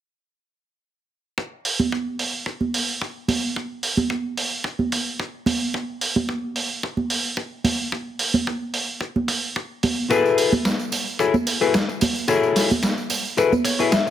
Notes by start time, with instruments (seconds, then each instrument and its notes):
1.38 kick
1.65 open hi-hat
1.80 high conga
1.92 kick
2.19 open hi-hat
2.46 kick
2.61 high conga
2.74 open hi-hat
3.02 kick
3.28 open hi-hat, high conga
3.56 kick
3.83 open hi-hat
3.97 high conga
4.10 kick
4.37 open hi-hat
4.64 kick
4.79 high conga
4.92 kick, open hi-hat
5.20 kick
5.46 open hi-hat, high conga
5.74 kick
6.01 open hi-hat
6.16 high conga
6.29 kick
6.56 open hi-hat
6.83 kick
6.97 high conga
7.10 open hi-hat
7.37 kick
7.64 open hi-hat, high conga
7.92 kick
8.19 open hi-hat
8.34 high conga
8.47 kick
8.74 open hi-hat
9.01 kick
9.16 high conga
9.28 kick, open hi-hat
9.56 kick
9.83 open hi-hat, high conga
10.10 clean electric guitar E4 F#4 G#4 A4 B4, kick, tambourine
10.26 tambourine
10.38 open hi-hat, tambourine
10.52 tambourine, high conga
10.65 kick, snare, tambourine
10.79 tambourine
10.92 muted clean electric guitar stroke, open hi-hat, tambourine
11.07 tambourine
11.19 clean electric guitar E4 F#4 G#4 A4 C#5, kick, tambourine
11.34 tambourine, high conga
11.47 muted clean electric guitar stroke, open hi-hat, tambourine
11.61 clean electric guitar E4 F#4 G#4 A4 B4, tambourine
11.74 kick, snare, tambourine
11.88 muted clean electric guitar stroke, tambourine
12.01 muted clean electric guitar stroke, open hi-hat, tambourine, high conga
12.16 tambourine
12.28 clean electric guitar E4 F#4 G#4 A4 C#5, kick, tambourine
12.43 tambourine
12.56 snare, open hi-hat, tambourine
12.70 tambourine, high conga
12.83 kick, snare, tambourine
12.98 tambourine
13.10 muted clean electric guitar stroke, open hi-hat, tambourine
13.25 tambourine
13.37 clean electric guitar E4 F#4 G#4 A4 B4, kick, tambourine
13.52 tambourine, high conga
13.64 clean electric guitar C#5, muted clean electric guitar stroke, kick, open hi-hat, tambourine
13.79 clean electric guitar E4 F#4 G#4 A4 B4, tambourine
13.92 clean electric guitar E5, kick, snare, tambourine
14.06 muted clean electric guitar stroke